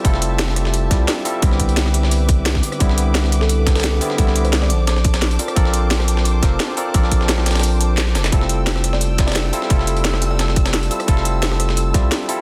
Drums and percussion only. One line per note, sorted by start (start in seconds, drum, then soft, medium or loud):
0.05 kick loud
0.05 closed hi-hat medium
0.14 snare soft
0.22 closed hi-hat medium
0.39 snare loud
0.39 closed hi-hat medium
0.48 cross-stick soft
0.48 snare medium
0.56 cross-stick soft
0.56 closed hi-hat medium
0.65 snare soft
0.74 closed hi-hat medium
0.91 kick loud
0.91 snare soft
0.91 closed hi-hat medium
1.08 snare loud
1.08 closed hi-hat medium
1.25 closed hi-hat medium
1.25 open hi-hat medium
1.42 kick loud
1.42 closed hi-hat medium
1.51 snare soft
1.60 kick medium
1.60 closed hi-hat medium
1.69 closed hi-hat soft
1.77 snare loud
1.77 closed hi-hat medium
1.86 cross-stick soft
1.86 snare soft
1.94 closed hi-hat medium
2.03 snare soft
2.11 closed hi-hat medium
2.11 open hi-hat medium
2.29 kick loud
2.29 closed hi-hat medium
2.46 snare loud
2.46 closed hi-hat medium
2.55 kick medium
2.55 snare medium
2.63 closed hi-hat medium
2.63 open hi-hat medium
2.72 cross-stick soft
2.72 closed hi-hat soft
2.80 kick loud
2.80 closed hi-hat medium
2.89 snare soft
2.98 closed hi-hat medium
3.15 snare loud
3.15 closed hi-hat medium
3.24 cross-stick soft
3.24 snare medium
3.32 cross-stick soft
3.32 closed hi-hat medium
3.41 snare soft
3.49 closed hi-hat medium
3.67 kick loud
3.67 snare loud
3.67 closed hi-hat medium
3.75 snare medium
3.75 closed hi-hat medium
3.80 snare medium
3.80 closed hi-hat medium
3.84 snare loud
3.84 closed hi-hat medium
4.01 closed hi-hat medium
4.01 open hi-hat medium
4.10 snare soft
4.18 kick loud
4.18 closed hi-hat medium
4.27 snare soft
4.36 closed hi-hat medium
4.45 closed hi-hat soft
4.53 snare loud
4.53 closed hi-hat medium
4.62 cross-stick soft
4.62 snare soft
4.70 closed hi-hat medium
4.87 snare loud
4.87 closed hi-hat medium
4.96 snare soft
5.04 kick loud
5.04 closed hi-hat medium
5.14 snare loud
5.14 closed hi-hat medium
5.22 snare loud
5.22 snare soft
5.22 closed hi-hat medium
5.31 closed hi-hat medium
5.39 closed hi-hat medium
5.39 open hi-hat medium
5.48 cross-stick soft
5.48 closed hi-hat soft
5.56 kick loud
5.56 closed hi-hat medium
5.65 snare soft
5.74 closed hi-hat loud
5.74 closed hi-hat medium
5.91 snare loud
5.91 closed hi-hat medium
6.00 cross-stick soft
6.00 snare medium
6.08 closed hi-hat loud
6.08 closed hi-hat medium
6.17 snare soft
6.25 closed hi-hat medium
6.43 kick loud
6.43 snare soft
6.43 closed hi-hat medium
6.60 snare loud
6.60 closed hi-hat medium
6.77 closed hi-hat medium
6.77 open hi-hat medium
6.94 kick loud
6.94 closed hi-hat medium
7.04 snare soft
7.12 kick medium
7.12 closed hi-hat loud
7.12 closed hi-hat medium
7.21 snare soft
7.29 snare loud
7.29 closed hi-hat medium
7.38 cross-stick soft
7.38 snare soft
7.46 cross-stick soft
7.46 snare medium
7.46 closed hi-hat loud
7.46 closed hi-hat medium
7.51 snare medium
7.51 closed hi-hat medium
7.55 snare medium
7.55 closed hi-hat medium
7.59 snare medium
7.59 closed hi-hat medium
7.63 closed hi-hat medium
7.63 open hi-hat medium
7.81 closed hi-hat medium
7.98 snare loud
7.98 clap loud
7.98 closed hi-hat medium
8.07 snare soft
8.15 snare loud
8.15 closed hi-hat medium
8.15 open hi-hat medium
8.24 snare loud
8.24 clap medium
8.24 closed hi-hat medium
8.32 kick loud
8.32 closed hi-hat medium
8.41 snare soft
8.49 closed hi-hat medium
8.67 snare loud
8.67 closed hi-hat medium
8.76 cross-stick soft
8.76 snare medium
8.84 cross-stick soft
8.84 closed hi-hat loud
8.84 closed hi-hat medium
8.93 snare soft
9.01 closed hi-hat medium
9.18 kick loud
9.18 snare loud
9.18 closed hi-hat loud
9.18 closed hi-hat medium
9.28 snare medium
9.28 closed hi-hat medium
9.32 snare medium
9.32 closed hi-hat medium
9.36 snare loud
9.36 closed hi-hat medium
9.53 closed hi-hat medium
9.53 open hi-hat medium
9.62 snare soft
9.70 kick loud
9.70 closed hi-hat medium
9.79 snare soft
9.87 closed hi-hat medium
9.97 closed hi-hat soft
10.05 snare loud
10.05 closed hi-hat medium
10.14 cross-stick medium
10.14 snare soft
10.22 closed hi-hat loud
10.22 closed hi-hat medium
10.39 snare loud
10.39 closed hi-hat medium
10.48 snare soft
10.56 kick loud
10.56 closed hi-hat medium
10.66 snare loud
10.66 closed hi-hat medium
10.74 snare loud
10.74 closed hi-hat medium
10.83 closed hi-hat medium
10.91 closed hi-hat medium
10.91 open hi-hat medium
11.00 cross-stick soft
11.00 closed hi-hat soft
11.08 kick loud
11.08 closed hi-hat medium
11.17 snare soft
11.25 closed hi-hat medium
11.43 snare loud
11.43 closed hi-hat medium
11.52 cross-stick soft
11.52 snare medium
11.60 cross-stick soft
11.60 closed hi-hat medium
11.69 snare medium
11.77 closed hi-hat medium
11.94 kick loud
11.94 snare soft
11.94 closed hi-hat medium
12.12 snare loud
12.12 closed hi-hat medium
12.29 closed hi-hat medium
12.29 open hi-hat medium